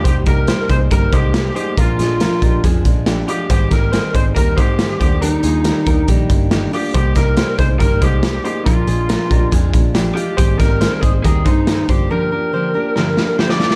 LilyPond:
<<
  \new Staff \with { instrumentName = "Clean electric guitar" } { \time 4/4 \key c \minor \tempo 4 = 139 <g' c''>8 <g' bes'>8 <g' c''>8 <aes' c''>8 <g' bes'>8 <aes c''>4 <aes' c''>8 | <f' bes'>8 <f' aes'>8 <f' bes'>8 <g' bes'>8 <f' aes'>4 <d' g'>8 <d' f'>8 | <aes' c''>8 <g' bes'>8 <aes' c''>8 <aes' c''>8 <g' bes'>8 <aes c''>4 <g' c''>8 | <g' bes'>8 <f' aes'>8 <g' bes'>8 <g' bes'>8 <ees' g'>4 <ees' g'>8 <d' f'>8 |
<g' c''>8 <g' bes'>8 <g' c''>8 <aes' c''>8 <g' bes'>8 <aes c''>4 <aes' c''>8 | <f' bes'>8 <f' aes'>8 <f' bes'>8 <g' bes'>8 <f' aes'>4 <d' g'>8 <d' f'>8 | <aes' c''>8 <g' bes'>8 <aes' c''>8 <aes' c''>8 <g' bes'>8 <aes' c''>4 <g' c''>8 | <g' bes'>8 <g' bes'>8 <g' c''>8 <g' bes'>8 <g' bes'>4 <d' g'>8 <d' f'>8 | }
  \new Staff \with { instrumentName = "Lead electric guitar" } { \time 4/4 \key c \minor g'8 bes'4 c''8 bes'8 g'4 g'8 | f'2 r4. g'8 | g'8 bes'4 c''8 bes'8 g'4 g'8 | ees'2 r4. g'8 |
g'8 bes'4 c''8 bes'8 g'4 g'8 | f'2 r4. g'8 | g'8 bes'4 aes'8 aes'8 ees'4 g'8 | bes'2. c''16 d''8 r16 | }
  \new Staff \with { instrumentName = "Steel-string acoustic guitar" } { \clef bass \time 4/4 \key c \minor <c g bes ees'>8 <g bes ees'>8 <c g bes ees'>8 <g bes ees'>8 <c g bes ees'>8 <g bes ees'>8 <c g bes ees'>8 <g bes ees'>8 | <bes, f aes d'>8 <f aes d'>8 <bes, f aes d'>8 <f aes d'>8 <bes, f aes d'>8 <f aes d'>8 <bes, f aes d'>8 <f aes d'>8 | <aes, ees g c' ees'>8 <g c' ees'>8 <ees g c' ees'>8 <g c' ees'>8 <aes, ees g c' ees'>8 <g c' ees'>8 <ees g c' ees'>8 <g bes d'>8 | <ees g bes d'>8 <g bes d'>8 <ees g bes d'>8 <g bes d'>8 <ees g bes d'>8 <bes d'>8 <ees g bes d'>8 <g bes d'>8 |
<c g bes ees'>8 <g bes ees'>8 <c g bes ees'>8 <g bes ees'>8 <c g bes ees'>8 <g bes ees'>8 <c g bes ees'>8 <g bes ees'>8 | <bes, f aes d'>8 <f aes d'>8 <bes, f aes d'>8 <f aes d'>8 <bes, f aes d'>8 <f aes d'>8 <bes, f aes d'>8 <f aes d'>8 | <aes, ees g c' ees'>8 <g c' ees'>8 <ees g c' ees'>8 <g c' ees'>8 <aes, ees g c' ees'>8 <g c' ees'>8 <ees g c' ees'>8 <f bes d'>8 | <g, d f bes d'>8 <f bes d'>8 <d f bes d'>8 <f bes d'>8 <g, d f bes d'>8 <f bes d'>8 <d f bes d'>8 <f bes d'>8 | }
  \new Staff \with { instrumentName = "Picked electric bass" } { \clef bass \time 4/4 \key c \minor c,8 c,8. r16 c,8 g,,8 c,4 r8 | bes,,8 bes,,8. r16 bes,,8 f,8 bes,,4 r8 | aes,,8 aes,,8. r16 aes,,8 ees,8 aes,4 ees,8~ | ees,8 ees,8. r16 ees,8 bes,,8 g,,4 r8 |
c,8 c,8. r16 c,8 g,,8 c,4 r8 | bes,,8 bes,,8. r16 bes,,8 f,8 bes,,4 r8 | aes,,8 aes,,8. r16 aes,,8 ees,8 g,4 g,,8 | r1 | }
  \new DrumStaff \with { instrumentName = "Drums" } \drummode { \time 4/4 <hh bd>8 <hh bd>8 <hh sn>8 <hh bd>8 <hh bd>8 <hh bd>8 <hh sn>8 hh8 | <hh bd>8 <hh sn>8 <hh sn>8 <hh bd>8 <hh bd>8 <hh bd>8 <hh sn>8 hh8 | <hh bd>8 <hh bd sn>8 <hh sn>8 <hh bd>8 <hh bd>8 <hh bd>8 <hh sn>8 <hh bd>8 | hh8 hh8 <hh sn>8 <hh bd>8 <hh bd>8 <hh bd>8 <hh sn>8 hho8 |
<hh bd>8 <hh bd sn>8 <hh sn>8 <hh bd>8 <hh bd>8 <hh bd>8 <hh sn>8 hh8 | <hh bd>8 hh8 <hh sn>8 <hh bd>8 <hh bd>8 <hh bd>8 <hh sn>8 hh8 | <hh bd>8 <hh bd sn>8 <hh sn>8 <hh bd>8 <hh bd>8 <hh bd>8 <hh sn>8 <hh bd>8 | r4 r4 sn8 sn8 sn16 sn16 sn16 sn16 | }
>>